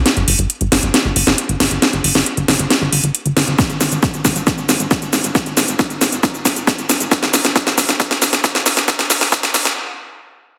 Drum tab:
HH |xxoxxxoxx-oxxxox|xxo-xxoxx-oxxxox|xxoxxxoxx-oxxxox|xxoxxxoxx-oxxxox|
SH |----------------|----------------|xxxxxxxxxxxxxxxx|xxxxxxxxxxxxxxxx|
SD |o-----o-o--o--o-|o--o--o-o-----o-|o-o-o-o-o-o-o-o-|o-o-o-o-o-o-o-o-|
BD |----------------|----------------|o---o-o-o---o---|o---o---o-o-o---|

HH |xxoxxxoxx-oxxxox|xxooxxox--------|
SH |xxxxxxxxxxxxxxxx|xxxxxxxx--------|
SD |oooooooooooooooo|oooooooo--------|
BD |o---o-o-o---o---|o---o-----------|